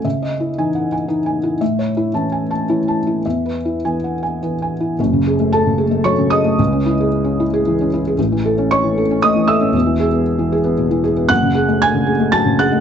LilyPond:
<<
  \new Staff \with { instrumentName = "Felt piano" } { \time 3/4 \key fis \dorian \tempo 4 = 114 \tuplet 3/2 { e''8 dis''8 e'8 gis''8 fis''8 gis''8 e'8 gis''8 e'8 } | \tuplet 3/2 { e''8 cis''8 e'8 a''8 gis''8 a''8 e'8 a''8 e'8 } | \tuplet 3/2 { e''8 b'8 e'8 gis''8 fis''8 gis''8 e'8 gis''8 e'8 } | r4 <a' a''>4 <cis'' cis'''>8 <dis'' dis'''>8~ |
<dis'' dis'''>2~ <dis'' dis'''>8 r8 | r4 <cis'' cis'''>4 <dis'' dis'''>8 <e'' e'''>8~ | <e'' e'''>2~ <e'' e'''>8 r8 | <fis'' fis'''>4 <gis'' gis'''>4 <a'' a'''>8 <fis'' fis'''>8 | }
  \new Staff \with { instrumentName = "Felt piano" } { \time 3/4 \key fis \dorian cis4 <e dis'>4 <e dis'>4 | a,4 <e cis'>4 <e cis'>4 | e,4 <e b>4 <e b>4 | <fis,, fis,>16 cis16 gis'16 a8 cis16 gis'16 a16 fis16 cis16 gis'16 a16 |
<cis, cis>16 cis'16 e'16 gis'8 cis'16 e'16 gis'16 e16 cis'16 e'16 gis'16 | <a,, a,>16 e16 a'16 cis'8 e16 a'16 cis'16 a16 e16 a'16 cis'16 | <e,, e,>16 e16 gis'16 b8 e16 gis'16 b16 b,16 e16 gis'16 b16 | <fis,, fis,>16 cis16 gis'16 a8 cis16 gis'16 a16 fis16 cis16 gis'16 a16 | }
>>